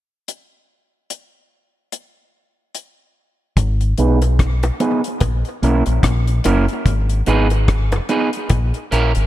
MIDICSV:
0, 0, Header, 1, 5, 480
1, 0, Start_track
1, 0, Key_signature, 5, "minor"
1, 0, Tempo, 822256
1, 164, Time_signature, 4, 2, 24, 8
1, 5409, End_track
2, 0, Start_track
2, 0, Title_t, "Clean electric guitar"
2, 0, Program_c, 0, 27
2, 2324, Note_on_c, 0, 59, 77
2, 2328, Note_on_c, 0, 63, 84
2, 2331, Note_on_c, 0, 68, 88
2, 2333, Note_on_c, 0, 71, 85
2, 2437, Note_off_c, 0, 59, 0
2, 2439, Note_off_c, 0, 63, 0
2, 2440, Note_off_c, 0, 68, 0
2, 2441, Note_off_c, 0, 71, 0
2, 2803, Note_on_c, 0, 59, 81
2, 2807, Note_on_c, 0, 63, 78
2, 2810, Note_on_c, 0, 68, 92
2, 2813, Note_on_c, 0, 71, 86
2, 2916, Note_off_c, 0, 59, 0
2, 2918, Note_off_c, 0, 63, 0
2, 2919, Note_off_c, 0, 68, 0
2, 2921, Note_off_c, 0, 71, 0
2, 3283, Note_on_c, 0, 58, 75
2, 3287, Note_on_c, 0, 61, 86
2, 3291, Note_on_c, 0, 64, 92
2, 3293, Note_on_c, 0, 70, 83
2, 3396, Note_off_c, 0, 58, 0
2, 3398, Note_off_c, 0, 61, 0
2, 3400, Note_off_c, 0, 64, 0
2, 3401, Note_off_c, 0, 70, 0
2, 3765, Note_on_c, 0, 58, 81
2, 3768, Note_on_c, 0, 61, 88
2, 3771, Note_on_c, 0, 64, 85
2, 3774, Note_on_c, 0, 70, 93
2, 3877, Note_off_c, 0, 58, 0
2, 3878, Note_off_c, 0, 61, 0
2, 3880, Note_off_c, 0, 64, 0
2, 3881, Note_off_c, 0, 70, 0
2, 4243, Note_on_c, 0, 59, 81
2, 4247, Note_on_c, 0, 63, 93
2, 4249, Note_on_c, 0, 68, 94
2, 4253, Note_on_c, 0, 71, 99
2, 4356, Note_off_c, 0, 59, 0
2, 4358, Note_off_c, 0, 63, 0
2, 4359, Note_off_c, 0, 68, 0
2, 4361, Note_off_c, 0, 71, 0
2, 4723, Note_on_c, 0, 59, 74
2, 4727, Note_on_c, 0, 63, 76
2, 4729, Note_on_c, 0, 68, 82
2, 4733, Note_on_c, 0, 71, 75
2, 4836, Note_off_c, 0, 59, 0
2, 4838, Note_off_c, 0, 63, 0
2, 4839, Note_off_c, 0, 68, 0
2, 4841, Note_off_c, 0, 71, 0
2, 5203, Note_on_c, 0, 58, 92
2, 5207, Note_on_c, 0, 61, 99
2, 5210, Note_on_c, 0, 64, 92
2, 5213, Note_on_c, 0, 70, 98
2, 5316, Note_off_c, 0, 58, 0
2, 5318, Note_off_c, 0, 61, 0
2, 5319, Note_off_c, 0, 64, 0
2, 5321, Note_off_c, 0, 70, 0
2, 5409, End_track
3, 0, Start_track
3, 0, Title_t, "Fingered electric bass"
3, 0, Program_c, 1, 33
3, 2084, Note_on_c, 1, 32, 109
3, 2292, Note_off_c, 1, 32, 0
3, 2326, Note_on_c, 1, 35, 74
3, 2741, Note_off_c, 1, 35, 0
3, 3045, Note_on_c, 1, 34, 89
3, 3166, Note_off_c, 1, 34, 0
3, 3286, Note_on_c, 1, 35, 81
3, 3406, Note_off_c, 1, 35, 0
3, 3427, Note_on_c, 1, 34, 79
3, 3512, Note_off_c, 1, 34, 0
3, 3523, Note_on_c, 1, 34, 89
3, 3731, Note_off_c, 1, 34, 0
3, 3770, Note_on_c, 1, 30, 84
3, 3888, Note_off_c, 1, 30, 0
3, 4004, Note_on_c, 1, 32, 104
3, 4212, Note_off_c, 1, 32, 0
3, 4248, Note_on_c, 1, 32, 97
3, 4662, Note_off_c, 1, 32, 0
3, 4966, Note_on_c, 1, 34, 104
3, 5086, Note_off_c, 1, 34, 0
3, 5209, Note_on_c, 1, 34, 75
3, 5328, Note_off_c, 1, 34, 0
3, 5349, Note_on_c, 1, 32, 74
3, 5409, Note_off_c, 1, 32, 0
3, 5409, End_track
4, 0, Start_track
4, 0, Title_t, "Muted clean electric guitar strokes"
4, 2705, Note_on_c, 9, 29, 44
4, 2763, Note_off_c, 9, 29, 0
4, 3423, Note_on_c, 9, 29, 41
4, 3482, Note_off_c, 9, 29, 0
4, 4625, Note_on_c, 9, 29, 45
4, 4683, Note_off_c, 9, 29, 0
4, 5349, Note_on_c, 9, 29, 39
4, 5408, Note_off_c, 9, 29, 0
4, 5409, End_track
5, 0, Start_track
5, 0, Title_t, "Drums"
5, 165, Note_on_c, 9, 42, 58
5, 223, Note_off_c, 9, 42, 0
5, 644, Note_on_c, 9, 42, 54
5, 702, Note_off_c, 9, 42, 0
5, 1123, Note_on_c, 9, 42, 54
5, 1182, Note_off_c, 9, 42, 0
5, 1603, Note_on_c, 9, 42, 51
5, 1661, Note_off_c, 9, 42, 0
5, 2083, Note_on_c, 9, 36, 100
5, 2083, Note_on_c, 9, 42, 83
5, 2141, Note_off_c, 9, 36, 0
5, 2142, Note_off_c, 9, 42, 0
5, 2222, Note_on_c, 9, 42, 48
5, 2281, Note_off_c, 9, 42, 0
5, 2321, Note_on_c, 9, 42, 65
5, 2379, Note_off_c, 9, 42, 0
5, 2461, Note_on_c, 9, 42, 54
5, 2464, Note_on_c, 9, 60, 46
5, 2520, Note_off_c, 9, 42, 0
5, 2523, Note_off_c, 9, 60, 0
5, 2564, Note_on_c, 9, 36, 106
5, 2565, Note_on_c, 9, 42, 75
5, 2567, Note_on_c, 9, 37, 100
5, 2622, Note_off_c, 9, 36, 0
5, 2623, Note_off_c, 9, 42, 0
5, 2626, Note_off_c, 9, 37, 0
5, 2702, Note_on_c, 9, 42, 51
5, 2705, Note_on_c, 9, 60, 77
5, 2760, Note_off_c, 9, 42, 0
5, 2764, Note_off_c, 9, 60, 0
5, 2803, Note_on_c, 9, 42, 72
5, 2803, Note_on_c, 9, 61, 68
5, 2861, Note_off_c, 9, 42, 0
5, 2861, Note_off_c, 9, 61, 0
5, 2943, Note_on_c, 9, 42, 57
5, 3002, Note_off_c, 9, 42, 0
5, 3038, Note_on_c, 9, 42, 79
5, 3042, Note_on_c, 9, 36, 113
5, 3042, Note_on_c, 9, 60, 72
5, 3097, Note_off_c, 9, 42, 0
5, 3100, Note_off_c, 9, 60, 0
5, 3101, Note_off_c, 9, 36, 0
5, 3181, Note_on_c, 9, 42, 39
5, 3239, Note_off_c, 9, 42, 0
5, 3286, Note_on_c, 9, 42, 70
5, 3345, Note_off_c, 9, 42, 0
5, 3420, Note_on_c, 9, 42, 59
5, 3478, Note_off_c, 9, 42, 0
5, 3521, Note_on_c, 9, 36, 98
5, 3522, Note_on_c, 9, 42, 91
5, 3526, Note_on_c, 9, 37, 107
5, 3579, Note_off_c, 9, 36, 0
5, 3580, Note_off_c, 9, 42, 0
5, 3585, Note_off_c, 9, 37, 0
5, 3663, Note_on_c, 9, 42, 52
5, 3721, Note_off_c, 9, 42, 0
5, 3760, Note_on_c, 9, 42, 91
5, 3769, Note_on_c, 9, 60, 68
5, 3769, Note_on_c, 9, 61, 67
5, 3819, Note_off_c, 9, 42, 0
5, 3827, Note_off_c, 9, 60, 0
5, 3827, Note_off_c, 9, 61, 0
5, 3902, Note_on_c, 9, 42, 44
5, 3961, Note_off_c, 9, 42, 0
5, 4002, Note_on_c, 9, 36, 99
5, 4002, Note_on_c, 9, 42, 76
5, 4061, Note_off_c, 9, 36, 0
5, 4061, Note_off_c, 9, 42, 0
5, 4142, Note_on_c, 9, 42, 48
5, 4200, Note_off_c, 9, 42, 0
5, 4240, Note_on_c, 9, 42, 68
5, 4299, Note_off_c, 9, 42, 0
5, 4380, Note_on_c, 9, 42, 50
5, 4386, Note_on_c, 9, 60, 46
5, 4439, Note_off_c, 9, 42, 0
5, 4444, Note_off_c, 9, 60, 0
5, 4484, Note_on_c, 9, 36, 95
5, 4484, Note_on_c, 9, 42, 70
5, 4487, Note_on_c, 9, 37, 100
5, 4543, Note_off_c, 9, 36, 0
5, 4543, Note_off_c, 9, 42, 0
5, 4545, Note_off_c, 9, 37, 0
5, 4623, Note_on_c, 9, 42, 45
5, 4626, Note_on_c, 9, 60, 76
5, 4681, Note_off_c, 9, 42, 0
5, 4684, Note_off_c, 9, 60, 0
5, 4722, Note_on_c, 9, 42, 71
5, 4723, Note_on_c, 9, 61, 67
5, 4781, Note_off_c, 9, 42, 0
5, 4782, Note_off_c, 9, 61, 0
5, 4863, Note_on_c, 9, 42, 56
5, 4921, Note_off_c, 9, 42, 0
5, 4959, Note_on_c, 9, 42, 92
5, 4959, Note_on_c, 9, 60, 61
5, 4963, Note_on_c, 9, 36, 103
5, 5017, Note_off_c, 9, 60, 0
5, 5018, Note_off_c, 9, 42, 0
5, 5022, Note_off_c, 9, 36, 0
5, 5102, Note_on_c, 9, 42, 41
5, 5160, Note_off_c, 9, 42, 0
5, 5208, Note_on_c, 9, 42, 68
5, 5266, Note_off_c, 9, 42, 0
5, 5341, Note_on_c, 9, 42, 53
5, 5399, Note_off_c, 9, 42, 0
5, 5409, End_track
0, 0, End_of_file